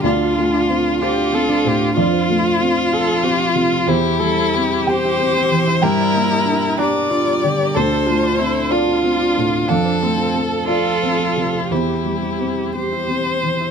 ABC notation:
X:1
M:6/8
L:1/16
Q:3/8=62
K:Cmix
V:1 name="Harp"
[Dd] A2 D c2 D F A D c F | F c2 F f2 F A c F f A | C G2 C c2 C E G C c E | G d2 G3 G B d G g B |
D A2 D c2 D F A D c F | F c2 F f2 F A c F f A | C G2 C c2 C E G C c E |]
V:2 name="Viola"
F6 G2 A2 G2 | F6 A2 G2 F2 | G2 A2 G8 | E6 D2 F2 G2 |
A2 F2 E2 F6 | D2 C2 A8 | G8- G z3 |]
V:3 name="Violin"
F6 F6 | F12 | E6 c6 | B6 d6 |
c6 F6 | A6 F6 | E6 c6 |]
V:4 name="Felt piano"
d6 c6 | d12 | c6 g6 | g6 b6 |
a6 d6 | f6 d6 | c8- c2 z2 |]
V:5 name="Felt piano"
D,,2 A,2 C2 F2 C2 A,,2 | F,,2 A,2 C2 F2 C2 C,2 | E,,2 G,2 C2 G2 C2 E,2 | G,,2 B,2 D2 G2 D2 D,2 |
D,,2 A,2 C2 F2 C2 A,,2 | F,,2 A,2 C2 F2 C2 C,2 | E,,2 G,2 C2 G2 C2 E,2 |]